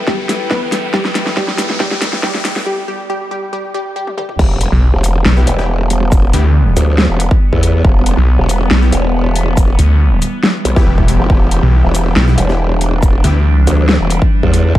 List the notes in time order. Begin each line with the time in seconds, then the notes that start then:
Already playing: E2 E3 G3 B3 E4 A4 B4 G5, riser
0.07 G3 G4, kick, snare
0.29 snare, closed hi-hat
0.51 B3 B4, kick, snare
0.72 snare, closed hi-hat
0.94 G3 G4, kick, snare
1.05 snare
1.15 snare, closed hi-hat
1.27 snare
1.37 G3 G4, kick, snare
1.48 snare
1.58 snare, closed hi-hat, shaker
1.70 snare
1.80 G3 G4, kick, snare
1.91 snare
2.02 snare, closed hi-hat
2.13 snare
2.23 G3 G4, kick, snare
2.35 snare
2.45 snare, closed hi-hat
2.56 snare
2.66 G3 G4
2.88 G3 G4
3.10 G3 G4
3.31 G3 G4
3.53 G3 G4
3.74 G3 G4
3.96 G3 G4
4.07 high tom
4.18 G3 G4, mid tom
4.29 mid tom
4.39 E1 E3 G3 B3, kick, crash, impact
4.61 closed hi-hat
4.72 B1
4.94 E1
5.04 closed hi-hat, shaker
5.25 B1, snare
5.37 B3 E4 G4
5.47 E1, closed hi-hat
5.58 B3 E4 G4
5.90 closed hi-hat
6.12 kick, shaker
6.33 D2 B3 E4 G4, closed hi-hat
6.77 D2, closed hi-hat, shaker
6.98 snare
7.10 E1
7.20 closed hi-hat
7.31 kick
7.53 E2, kick
7.63 closed hi-hat
7.85 E1, kick
8.06 closed hi-hat
8.17 B1
8.39 E1
8.49 closed hi-hat, shaker
8.71 B1, snare
8.82 B3 E4 G4
8.92 E1, closed hi-hat
9.36 closed hi-hat
9.57 kick, shaker
9.79 D2, closed hi-hat
10.22 closed hi-hat, shaker
10.43 snare
10.65 B1, closed hi-hat
10.76 B3 E4 G4, kick
10.87 E1
10.98 kick
11.08 closed hi-hat
11.20 F1
11.30 E1 D4, kick
11.51 closed hi-hat
11.63 B1
11.84 E1
11.95 closed hi-hat, shaker
12.16 B1, snare
12.28 B3 E4 G4
12.38 E1, closed hi-hat
12.49 B3 E4 G4
12.81 closed hi-hat
13.03 kick, shaker
13.24 D2 B3 E4 G4, closed hi-hat
13.67 D2, closed hi-hat, shaker
13.89 snare
14.00 E1
14.10 closed hi-hat
14.22 kick
14.43 E2, kick
14.54 closed hi-hat
14.75 E1, kick